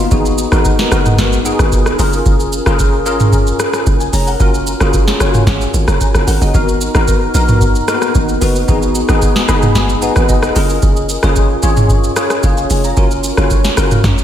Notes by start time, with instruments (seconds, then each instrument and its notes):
Already playing: tine electric piano A#3 B3 D#4 F4 F#4
0.11 log drum bass G#1, tine electric piano B3 D#4 F#4 G#4, kick, shaker
0.26 shaker
0.38 shaker
0.52 log drum bass G#1, tine electric piano B3 D#4 F#4 A#4, cross-stick, shaker
0.65 kick, shaker
0.79 snare
0.91 log drum bass F#1, tine electric piano B3 D#4 F#4 A#4, cross-stick, shaker
1.06 mid tom, shaker
1.18 log drum bass G#1, kick, snare, shaker
1.33 shaker
1.45 tine electric piano B3 D#4 F4 G#4, shaker
1.52 tine electric piano F#4
1.59 log drum bass G#1, cross-stick, shaker
1.72 log drum bass F#1, kick, shaker
1.86 cross-stick, shaker
1.98 log drum bass F#1, tine electric piano C#4 F4 G#4 A#4, open hi-hat, shaker
2.13 shaker
2.26 log drum bass F#1, kick, shaker
2.40 shaker
2.53 shaker
2.66 log drum bass F#1, tine electric piano C#4 F4 G#4 A#4, cross-stick, shaker
2.79 kick, shaker
3.06 log drum bass G#1, tine electric piano C#4 F4 G#4 A#4, shaker
3.20 mid tom, shaker
3.33 kick, shaker
3.47 shaker
3.60 cross-stick, shaker
3.73 cross-stick, shaker
3.86 log drum bass F#1, kick, shaker
4.00 tine electric piano G#5, shaker
4.13 log drum bass F1, tine electric piano C#5 A#5, open hi-hat, shaker
4.27 tine electric piano A#4 F#5, shaker
4.39 log drum bass F#1, tine electric piano C#4 F4 F#4 A#4, kick, shaker
4.54 shaker
4.67 shaker
4.80 log drum bass F#1, tine electric piano C#4 F4 F#4 G#4, cross-stick, shaker
4.93 kick, shaker
5.08 snare, shaker
5.20 log drum bass F#1, tine electric piano C#4 F4 F#4 C#5, cross-stick, shaker
5.34 mid tom, shaker
5.47 log drum bass G#1, kick, snare, shaker
5.61 shaker
5.74 log drum bass G#1, shaker
5.88 log drum bass F#1, tine electric piano C#5 A#5, cross-stick, shaker
6.01 tine electric piano G#5, kick, shaker
6.14 log drum bass F#1, cross-stick, shaker
6.27 log drum bass G#1, tine electric piano A#4 F#5, open hi-hat, shaker
6.41 log drum bass F#1, tine electric piano F#4 D#5, shaker
6.54 log drum bass G#1, tine electric piano B3 D#4 F#4 A#4, kick, shaker
6.68 shaker
6.81 shaker
6.95 log drum bass G#1, tine electric piano B3 D#4 F#4 A#4, cross-stick, shaker
7.08 kick, shaker
7.34 log drum bass A#1, tine electric piano B3 D#4 F#4 A#4, shaker
7.48 mid tom, shaker
7.61 kick, shaker
7.75 shaker
7.88 tine electric piano A#3 D#4 F#4 A#4, cross-stick, shaker
7.94 tine electric piano B3
8.02 cross-stick, shaker
8.15 log drum bass G#1, kick, shaker
8.29 shaker
8.41 log drum bass F#1, tine electric piano B3 D#4 F#4 B4, open hi-hat, shaker
8.56 shaker
8.68 log drum bass G#1, tine electric piano B3 D#4 F#4 G#4, kick, shaker
8.82 shaker
8.95 shaker
9.09 log drum bass G#1, tine electric piano B3 D#4 F#4 G#4, cross-stick, shaker
9.22 kick, shaker
9.36 snare
9.48 log drum bass F#1, tine electric piano B3 D#4 F#4 G#4 B5, cross-stick, shaker
9.63 mid tom, shaker
9.75 log drum bass G#1, tine electric piano G#5, kick, snare, shaker
9.89 shaker
10.02 tine electric piano B3 D#4 F#4 B4 F#5, shaker
10.16 log drum bass G#1, cross-stick, shaker
10.29 log drum bass F#1, tine electric piano D#5, kick, shaker
10.43 cross-stick, shaker
10.55 log drum bass F#1, tine electric piano C#4 F4 G#4 A#4, open hi-hat, shaker
10.70 shaker
10.82 log drum bass F#1, kick, shaker
10.96 shaker
11.09 shaker
11.23 log drum bass F#1, tine electric piano C#4 F4 G#4 C#5, cross-stick, shaker
11.36 kick, shaker
11.63 log drum bass G#1, tine electric piano C#4 F4 G#4 C#5, shaker
11.77 mid tom, shaker
11.89 kick, shaker
12.04 shaker
12.16 tine electric piano C#4 F4 G#4 C#5, cross-stick, shaker
12.30 cross-stick, shaker
12.43 log drum bass F#1, tine electric piano G#4 F5, kick, shaker
12.57 tine electric piano G#5, shaker
12.70 log drum bass F1, open hi-hat, shaker
12.84 tine electric piano C#5 A#5, shaker
12.97 log drum bass F#1, tine electric piano C#4 F4 F#4 A#4, kick, shaker
13.11 shaker
13.24 shaker
13.37 log drum bass F#1, tine electric piano C#4 F4 F#4 C#5, cross-stick, shaker
13.50 kick, shaker
13.65 snare, shaker
13.77 log drum bass F#1, tine electric piano C#4 F4 F#4 A#4, cross-stick, shaker
13.91 mid tom, shaker
14.04 log drum bass F#2, kick, snare, shaker
14.18 shaker